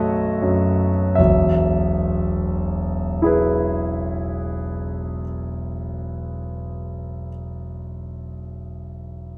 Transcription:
0.00 1.14 B1 soft
0.00 1.21 A3 soft
0.00 0.11 F#4 soft
0.00 1.21 B4 medium
0.00 1.21 C#5 medium
0.00 1.15 D#5 medium
0.00 1.15 E5 medium
0.42 1.17 F#2 soft
1.15 5.23 E1 soft
1.15 5.23 B1 soft
1.15 5.20 E5 soft
3.22 7.27 E4 soft
3.22 7.28 G#4 soft
3.26 7.31 B4 soft

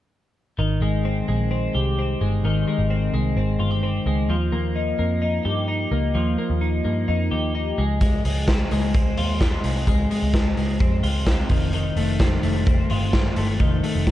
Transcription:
0.59 0.78 G#1 loud
0.59 2.44 D#3 medium
0.81 1.21 G#1 medium
0.81 1.27 G#3 medium
1.05 1.50 C4 medium
1.28 1.68 A#1 medium
1.28 2.20 G#3 medium
1.51 1.97 C4 medium
1.75 2.14 C2 medium
1.75 3.59 G4 medium
1.99 2.89 C4 soft
2.21 2.41 G1 medium
2.21 2.66 G#3 medium
2.44 2.63 G#1 medium
2.44 4.29 D#3 medium
2.68 3.13 G#3 soft
2.79 3.08 G#1 medium
2.90 3.36 C4 medium
3.13 3.33 C2 medium
3.13 4.06 G#3 medium
3.36 3.56 G#1 medium
3.36 3.82 C4 medium
3.59 3.99 G1 medium
3.59 3.71 F4 medium
3.71 4.34 G4 medium
3.83 4.34 C4 medium
4.06 4.26 C#2 medium
4.06 4.34 G#3 medium
4.29 4.49 D#2 loud
4.29 6.14 F3 medium
4.52 4.92 D#2 medium
4.52 4.97 A#3 medium
4.76 5.21 D#4 medium
4.99 5.39 F2 medium
4.99 5.90 A#3 medium
5.22 5.67 D#4 medium
5.45 5.85 G2 medium
5.45 7.30 G4 medium
5.68 6.60 D#4 medium
5.91 6.11 C#2 medium
5.91 6.37 A#3 medium
6.15 6.35 D#2 medium
6.15 9.65 F3 medium
6.38 6.83 A#3 medium
6.50 6.80 D#2 medium
6.61 7.07 D#4 medium
6.85 7.05 G2 medium
6.85 7.78 A#3 medium
7.08 7.28 F2 medium
7.08 7.54 D#4 medium
7.31 7.71 D#2 medium
7.31 7.82 G4 medium
7.55 7.83 D#4 medium
7.78 8.18 C#2 medium
7.78 8.00 G#3 medium
8.01 8.24 G#3 medium
8.01 kick medium
8.01 closed hi-hat medium
8.25 8.64 C#2 medium
8.25 8.70 G#3 soft
8.25 open hi-hat medium
8.48 8.95 C4 medium
8.48 kick loud
8.48 snare loud
8.48 closed hi-hat medium
8.71 9.11 C#2 medium
8.71 9.64 G#3 medium
8.71 open hi-hat medium
8.94 9.41 C4 medium
8.94 kick loud
8.94 closed hi-hat medium
9.17 9.57 D#2 medium
9.17 11.03 F4 medium
9.17 open hi-hat medium
9.41 10.34 C4 soft
9.41 kick medium
9.41 snare medium
9.41 closed hi-hat medium
9.64 9.84 C2 medium
9.64 9.86 G#3 soft
9.64 open hi-hat medium
9.87 10.07 C#2 loud
9.87 10.10 G#3 medium
9.87 kick medium
9.87 closed hi-hat medium
10.11 10.56 G#3 soft
10.11 open hi-hat medium
10.22 10.52 C#2 medium
10.34 10.80 C4 medium
10.34 kick loud
10.34 snare medium
10.34 closed hi-hat medium
10.57 10.77 C#2 medium
10.57 11.55 G#3 soft
10.57 open hi-hat medium
10.80 11.00 F2 medium
10.80 11.27 C4 medium
10.80 kick loud
10.80 closed hi-hat medium
11.03 11.43 C#2 medium
11.03 11.77 F4 medium
11.03 open hi-hat medium
11.27 12.20 C4 medium
11.27 kick medium
11.27 snare medium
11.27 closed hi-hat medium
11.49 11.90 F1 medium
11.49 11.73 D#3 medium
11.49 kick medium
11.49 open hi-hat medium
11.73 13.60 D#3 medium
11.73 closed hi-hat soft
11.96 12.36 F1 loud
11.96 12.42 A3 medium
11.96 open hi-hat medium
12.20 12.65 C4 medium
12.20 kick loud
12.20 snare medium
12.20 closed hi-hat medium
12.43 12.83 F1 medium
12.43 13.35 A3 medium
12.43 open hi-hat medium
12.67 13.12 C4 medium
12.67 kick loud
12.67 closed hi-hat medium
12.90 13.30 G1 medium
12.90 14.11 F4 medium
12.90 open hi-hat medium
13.13 14.06 C4 medium
13.13 kick medium
13.13 snare loud
13.13 closed hi-hat medium
13.36 13.57 G1 medium
13.36 13.82 A3 soft
13.36 open hi-hat medium
13.60 13.80 F1 loud
13.60 14.11 D#3 medium
13.60 kick medium
13.60 closed hi-hat soft
13.83 14.11 A3 medium
13.83 open hi-hat medium
13.95 14.11 F1 medium
14.07 14.11 C4 medium
14.07 kick loud
14.07 snare medium
14.07 closed hi-hat medium

